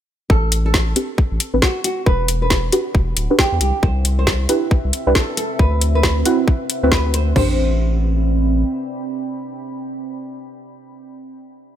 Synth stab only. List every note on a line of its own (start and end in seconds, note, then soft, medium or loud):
0.96 1.08 C4 medium
0.96 1.08 D4 medium
0.96 1.08 G4 medium
0.96 1.08 B4 loud
1.54 1.61 C4 medium
1.54 1.61 D4 medium
1.54 1.61 G4 medium
1.54 1.61 B4 medium
2.72 2.85 D4 medium
2.72 2.85 F#4 medium
2.72 2.84 G4 medium
2.72 2.85 B4 loud
3.30 3.38 D4 medium
3.30 3.38 F#4 medium
3.30 3.38 G4 medium
3.30 3.38 B4 loud
4.49 4.61 D4 medium
4.49 4.61 E4 medium
4.49 4.61 G4 medium
4.49 4.61 B4 loud
5.07 5.14 D4 medium
5.07 5.14 E4 medium
5.07 5.14 G4 medium
5.07 5.14 B4 loud
6.26 6.38 C4 medium
6.26 6.38 E4 medium
6.26 6.38 F#4 medium
6.26 6.38 B4 loud
6.83 6.91 C4 medium
6.83 6.91 E4 medium
6.83 6.91 F#4 medium
6.83 6.91 B4 medium
7.36 10.38 C4 medium
7.36 10.38 D4 medium
7.36 10.38 G4 medium
7.36 10.38 C5 medium